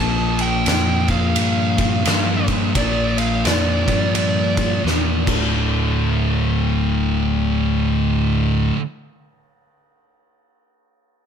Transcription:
Already playing: picked electric bass A#1, distorted electric guitar A#2 F3
0.00 distorted electric guitar A#3, lead electric guitar A5
0.39 lead electric guitar G5, ride
0.66 picked electric bass F2, snare, ride
1.07 distorted electric guitar A#2 F3 A#3, lead electric guitar F5, kick, ride
1.36 picked electric bass G2, ride
1.78 distorted electric guitar A#2 F3 A#3, kick, ride
2.05 picked electric bass G2, distorted electric guitar A#2 F3 A#3, snare, ride
2.48 kick, ride
2.75 picked electric bass A#1, distorted electric guitar A#2 F3 A#3, lead electric guitar D5, kick, ride
3.18 lead electric guitar F5, ride
3.45 picked electric bass F2, lead electric guitar D5, snare, ride
3.86 picked electric bass G2, distorted electric guitar A#2 F3 A#3, kick, ride
4.14 picked electric bass G2, lead electric guitar D5, ride
4.56 distorted electric guitar A#2 F3 A#3, kick, ride
4.83 picked electric bass E2, distorted electric guitar A#2 F3 A#3, snare
5.26 picked electric bass D1, distorted electric guitar D2 A2 D3, kick, crash

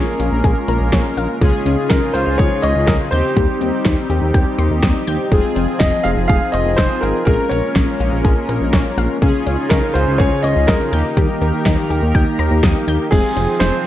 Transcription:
Already playing: analog synth pad G#3 A#3 C#4, synth pluck C#4, analog polysynth C#4 F4 A#4, grand piano G#4
0.20 analog synth bass A#1, synth pluck F4, closed hi-hat
0.32 analog synth bass A#1
0.44 analog synth bass A#1, synth pluck G#4, kick, closed hi-hat
0.68 analog synth bass A#1, synth pluck A#4, closed hi-hat
0.81 analog synth bass A#1
0.93 analog synth bass A#1, synth pluck C#5, kick, snare, closed hi-hat
1.17 analog synth bass A#1, synth pluck F5, closed hi-hat
1.41 analog synth bass C#2, analog synth pad C#3 D#4 F4, synth pluck G#3, analog polysynth C#4 F4 G#4, kick, closed hi-hat
1.66 analog synth bass C#2, synth pluck C#4, closed hi-hat
1.89 analog synth bass C#2, synth pluck D#4, grand piano A#4, kick, snare, closed hi-hat
2.14 analog synth bass C#2, synth pluck F4, grand piano C5, closed hi-hat
2.27 analog synth bass C#2
2.38 analog synth bass C#2, synth pluck G#4, grand piano C#5, kick, closed hi-hat
2.62 analog synth bass C#2, synth pluck C#5, grand piano D#5, closed hi-hat
2.76 analog synth bass C#2
2.86 analog synth bass C#2, grand piano A#4, synth pluck D#5, kick, snare, closed hi-hat
3.11 analog synth bass D#2, analog synth pad G3 C4, analog polysynth C4 D#4 G4, grand piano C5, synth pluck G6, closed hi-hat
3.37 analog synth bass D#2, synth pluck G3, kick, closed hi-hat
3.61 analog synth bass D#2, synth pluck C4, closed hi-hat
3.85 analog synth bass D#2, synth pluck D#4, kick, snare, closed hi-hat
4.10 analog synth bass D#2, synth pluck G4, closed hi-hat
4.22 analog synth bass D#2
4.34 analog synth bass D#2, synth pluck G5, kick, closed hi-hat
4.58 analog synth bass D#2, synth pluck C6, closed hi-hat
4.71 analog synth bass D#2
4.83 analog synth bass D#2, synth pluck D#6, kick, snare, closed hi-hat
5.07 analog synth bass D#2, synth pluck G6, closed hi-hat
5.32 analog synth bass F1, analog synth pad F3 G#4, synth pluck G#3, analog polysynth C4 F4 G#4, kick, closed hi-hat
5.56 analog synth bass F1, synth pluck C4, closed hi-hat
5.79 analog synth bass F1, synth pluck D#4, grand piano D#5, kick, snare, closed hi-hat
6.03 analog synth bass F1, synth pluck F4, grand piano F5, closed hi-hat
6.17 analog synth bass F1
6.28 analog synth bass F1, synth pluck G#4, grand piano F5, kick, closed hi-hat
6.52 analog synth bass F1, synth pluck C5, grand piano D#5, closed hi-hat
6.66 analog synth bass F1
6.76 analog synth bass F1, grand piano C5, synth pluck D#5, kick, snare, closed hi-hat
7.01 analog synth bass G#1, grand piano A#4, synth pluck F5, closed hi-hat
7.25 analog synth bass A#1, analog synth pad G#3 A#3 C#4, synth pluck G#3, analog polysynth C#4 F4 A#4, grand piano A#4, kick, closed hi-hat
7.49 analog synth bass A#1, synth pluck A#3, grand piano C#5, closed hi-hat
7.76 analog synth bass A#1, synth pluck C#4, kick, snare, closed hi-hat
8.00 analog synth bass A#1, synth pluck F4, closed hi-hat
8.12 analog synth bass A#1
8.24 analog synth bass A#1, synth pluck G#4, kick, closed hi-hat
8.49 analog synth bass A#1, synth pluck A#4, closed hi-hat
8.61 analog synth bass A#1
8.73 analog synth bass A#1, synth pluck C#5, kick, snare, closed hi-hat
8.98 analog synth bass A#1, synth pluck F5, closed hi-hat
9.22 analog synth bass C#2, analog synth pad C#3 C#4 D#4 F4, synth pluck G#3, analog polysynth C#4 F4 G#4, kick, closed hi-hat
9.46 analog synth bass C#2, synth pluck C#4, closed hi-hat
9.69 analog synth bass C#2, synth pluck D#4, grand piano A#4, kick, snare, closed hi-hat
9.94 analog synth bass C#2, synth pluck F4, grand piano C5, closed hi-hat
10.07 analog synth bass C#2
10.18 analog synth bass C#2, synth pluck G#4, grand piano C#5, kick, closed hi-hat
10.43 analog synth bass C#2, synth pluck C#5, grand piano D#5, closed hi-hat
10.56 analog synth bass C#2
10.67 analog synth bass C#2, grand piano A#4, synth pluck D#5, kick, snare, closed hi-hat
10.91 analog synth bass D#2, analog synth pad D#3 G4 A#4, analog polysynth A#3 D#4 G4, grand piano A#4, synth pluck G6, closed hi-hat
11.17 analog synth bass D#2, synth pluck G3, kick, closed hi-hat
11.41 analog synth bass D#2, synth pluck A#3, closed hi-hat
11.66 analog synth bass D#2, synth pluck D#4, kick, snare, closed hi-hat
11.90 analog synth bass D#2, synth pluck G4, closed hi-hat
12.02 analog synth bass D#2
12.15 analog synth bass D#2, synth pluck G5, kick, closed hi-hat
12.39 analog synth bass D#2, synth pluck A#5, closed hi-hat
12.51 analog synth bass D#2
12.63 analog synth bass D#2, synth pluck D#6, kick, snare, closed hi-hat
12.88 analog synth bass D#2, synth pluck G6, closed hi-hat
13.11 analog synth bass F1, analog synth pad F3 C4 D#4 G#4, synth pluck G#3, analog polysynth C4 F4 G#4, grand piano G#4, kick, closed hi-hat, crash
13.37 analog synth bass F1, synth pluck C4, closed hi-hat
13.60 analog synth bass F1, synth pluck D#4, grand piano C5, snare, closed hi-hat

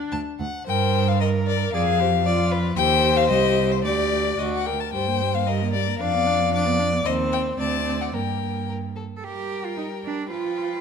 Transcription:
Already playing: viola D4, violin D5
0.12 cello D2, violin A5
0.40 cello D2, violin F#5
0.67 cello G2, viola A#4, violin C5 G5
1.08 violin F5
1.20 violin A#4 D#5, viola A#4
1.47 violin D5
1.73 cello F2, viola G#4, violin D5 F5
2.00 viola G4, violin C5
2.25 viola F4, violin D5
2.51 violin B4
2.76 cello D#2, viola G4, violin C5 G5
3.17 violin F5
3.30 cello C2, viola G4, violin D#5
3.72 violin C5
3.84 cello D2, viola G4, violin D5
4.39 cello D2, viola F#4, violin D#5
4.54 violin F#5
4.66 viola A#4, violin G5
4.80 violin A5
4.93 cello G2, viola G3, violin C5 G5
5.07 viola A#3
5.21 viola G3
5.34 viola A#3, violin F5
5.47 viola G3, violin A#4 D#5
5.61 viola A#3
5.73 viola G3, violin D5
5.87 viola A#3
5.99 cello F2, viola D4, violin D5 F5
6.14 viola B3
6.27 viola D4
6.40 viola B3
6.53 viola D4, violin D5
6.66 viola B3
6.79 viola D4
6.92 viola B3
7.06 cello D#2, viola C4, violin C5 D#5
7.33 violin G5
7.59 cello D2, viola C4, violin D5 A5
8.01 violin F#5
8.13 cello G2, viola A#3, violin A#4 G5
8.69 violin A#4
8.96 violin A4
9.17 cello A4
9.23 viola G3, cello G4, violin A#4 G5
9.65 cello F4
9.78 cello D#4
10.05 cello D4
10.30 viola F3, cello F4, violin B4 G5

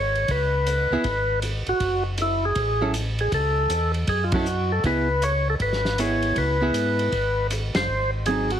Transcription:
Already playing: tonewheel organ G#1 C#5
0.15 ride
0.28 tonewheel organ C#2 B4, kick, ride
0.67 hi-hat pedal, ride
0.90 tonewheel organ C#2, hollow-body jazz guitar B3 E4 G#4
1.04 tonewheel organ G#1, kick, ride
1.42 hi-hat pedal, ride
1.66 tonewheel organ G#1 F#4, ride
1.80 tonewheel organ F#1, kick, ride
2.18 hi-hat pedal, ride
2.22 tonewheel organ E4
2.45 tonewheel organ G#4
2.55 tonewheel organ A1, kick, ride
2.81 hollow-body jazz guitar F#3 C#4 E4 A4
2.94 hi-hat pedal, ride
3.19 tonewheel organ G#4, ride
3.32 tonewheel organ C#2 A4, kick, ride
3.69 tonewheel organ E2, hi-hat pedal, ride
3.94 ride
4.07 tonewheel organ F#2 G#4, kick, ride
4.24 tonewheel organ F4
4.32 hollow-body jazz guitar F#3 C#4 E4 A4, tonewheel organ F#4, kick, ride
4.46 hi-hat pedal
4.72 tonewheel organ A4
4.83 tonewheel organ C#2 B4, hollow-body jazz guitar B3 E4 G#4, kick, ride
5.22 tonewheel organ C#5, hi-hat pedal, ride
5.50 tonewheel organ A4
5.60 tonewheel organ G#1 B4, kick, ride
5.73 snare
5.85 snare
5.98 hollow-body jazz guitar B3 E4 G#4, tonewheel organ C#5, hi-hat pedal, ride
6.22 ride
6.35 tonewheel organ C#2 B4, kick, ride
6.61 hollow-body jazz guitar B3 E4 G#4
6.73 tonewheel organ G#2, hi-hat pedal, ride
6.99 ride
7.12 tonewheel organ G#1, kick, ride
7.51 hi-hat pedal, ride
7.74 tonewheel organ F#1 C5, snare, ride
7.88 tonewheel organ G#1
8.26 hollow-body jazz guitar F#3 C4 D#4, tonewheel organ G#4, hi-hat pedal, ride
8.50 tonewheel organ F#4, ride

